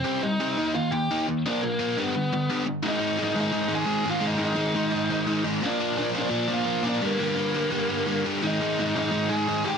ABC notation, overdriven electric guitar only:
X:1
M:4/4
L:1/8
Q:1/4=172
K:Ablyd
V:1 name="Overdriven electric guitar" clef=bass
[C,G,C] [C,G,] [C,G,C] [E,B,E] [E,B,] [E,B,] [E,B,E] [E,B,] | [B,,F,B,] [B,,F,] [B,,F,B,] [G,,D,G,] [G,,D,] [G,,D,] [G,,D,G,] [G,,D,] | [A,,E,A,] [A,,E,A,] [A,,E,A,] [A,,E,A,] [A,,E,A,] [A,,E,A,] [A,,E,A,] [A,,E,A,] | [A,,E,A,] [A,,E,A,] [A,,E,A,] [A,,E,A,] [A,,E,A,] [A,,E,A,] [A,,E,A,] [A,,E,A,] |
[B,,F,B,] [B,,F,B,] [B,,F,B,] [B,,F,B,] [B,,F,B,] [B,,F,B,] [B,,F,B,] [B,,F,B,] | [G,,D,G,] [G,,D,G,] [G,,D,G,] [G,,D,G,] [G,,D,G,] [G,,D,G,] [G,,D,G,] [G,,D,G,] | [A,,E,A,] [A,,E,A,] [A,,E,A,] [A,,E,A,] [A,,E,A,] [A,,E,A,] [A,,E,A,] [A,,E,A,] |]